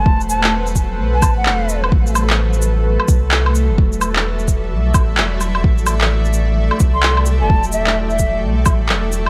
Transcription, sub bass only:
X:1
M:4/4
L:1/16
Q:"Swing 16ths" 1/4=129
K:Ador
V:1 name="Sub bass" clef=bass
E,,,8 B,,,2 A,,,2 E,,,4 | A,,,8- A,,, z C,,4- C,, E,,,- | E,,,8 B,,,2 A,,,2 E,,,4 | A,,,8- A,,, z C,,4- C,, E,,,- |
E,,,8 B,,,2 A,,,2 E,,,4 |]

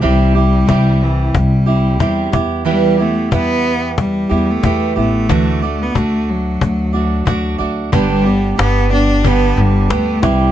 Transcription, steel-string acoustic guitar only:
X:1
M:4/4
L:1/8
Q:"Swing 16ths" 1/4=91
K:G
V:1 name="Steel-string acoustic guitar"
[C,G,CEG] [CEG] [G,CEG]3 [CEG] [G,CEG] [B,EG] | [E,G,B,EG] [B,EG] [G,B,EG]3 [B,EG] [G,B,EG] [B,EG] | [D,E,A,DFd] [A,DFd] [A,DFd]3 [A,DFd] [A,DFd] [A,DFd] | [G,,D,G,B,DG] [G,B,DG] [G,B,DG] [G,B,DG] [G,,D,G,B,DG]2 [G,B,DG] [C,G,CEG] |]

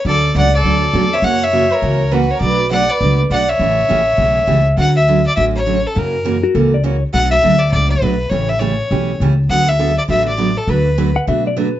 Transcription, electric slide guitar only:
X:1
M:4/4
L:1/16
Q:"Swing" 1/4=203
K:D
V:1 name="Electric slide guitar"
z16 | z16 | z16 | z16 |
z16 | z6 F2 A2 d2 c2 z2 | z16 | z16 |
z16 | z6 f2 e2 d2 B3 z |]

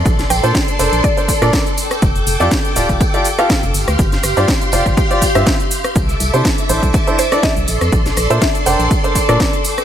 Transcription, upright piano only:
X:1
M:4/4
L:1/16
Q:"Swing 16ths" 1/4=122
K:Bblyd
V:1 name="Upright piano"
z3 [DABc] z2 [DABc]2 z [DABc] z [DABd]2 z3 | z3 [FGAd] z2 [FGAd]2 z [FGAd] z [FGAf]2 z3 | z3 [FGcd] z2 [FGcd]2 z [FGcd] z [FGce]2 z3 | z3 [DEAc] z2 [DEAc]2 z [DEAc] z [DEAd]2 z3 |
z3 [DABc] z2 [DABc]2 z [DABc] z [DABd]2 z3 |]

